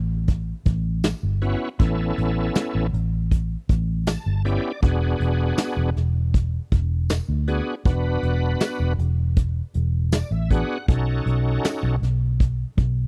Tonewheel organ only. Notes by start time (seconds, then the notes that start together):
1.42 B3 C#4 E4 F#4
1.79 B3 C#4 E4 A4
4.07 A5
4.45 B3 C#4 E4 G4 D5
4.82 B3 D4 F#4 G#4
7.48 B3 D4 F#4 G#4
7.86 B3 D4 F#4 B4
10.14 D5
10.32 E5
10.51 B3 D4 F#4 G#4 F#5
10.88 C#4 D#4 F#4 A4